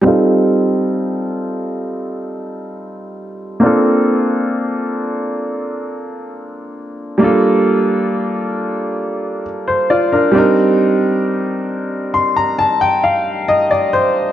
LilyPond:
\new Staff \with { instrumentName = "Grand piano" } { \time 4/4 \key f \mixolydian \tempo 4 = 67 << { r1 | r1 | r2 r8. c''16 <f' d''>16 <d' bes'>8 r16 | r4. c'''16 bes''16 a''16 g''16 f''8 ees''16 d''16 c''8 | } \\ { <g c' ees' f' a'>1 | <bes c' d' f' a'>1 | <g bes d' f' a'>2.~ <g bes d' f' a'>8 <g c' d' ees' bes'>8~ | <g c' d' ees' bes'>2.~ <g c' d' ees' bes'>8 r8 | } >> }